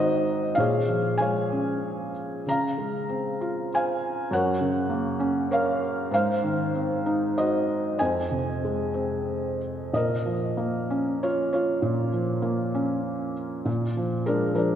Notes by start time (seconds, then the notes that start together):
Already playing: G#2 D#3 C4 D#4 F#4 C5 D#5
0.55 A#2 F5
0.59 G#4 C#5
0.89 F3
1.18 G#3 F5 G#5
1.22 C#5
1.52 C#4
2.47 C#3 F5 A#5
2.78 G#3
3.09 C4
3.41 F4
3.74 C5 F5 G#5
4.31 F#2 A#4 C#5 F#5
4.61 C#3
4.90 A#3
5.20 C#4
5.51 A#4 C#5 F5
6.11 G#2 C5 F5
6.43 D#3
6.75 C4
7.06 D#4
7.38 F#4 C5 D#5
7.98 F2 C5 D#5 G#5
8.31 C3
8.64 G#3
8.94 C4
9.93 A#2 A#4 D#5
10.26 F3
10.57 A#3
10.90 C#4
11.23 F4 C#5
11.53 F4 C#5
11.82 A#2
12.12 F3
12.42 A#3
12.74 C#4
13.65 A#2
13.97 F3
14.26 G#3 D4 A#4
14.54 F3 D4 A#4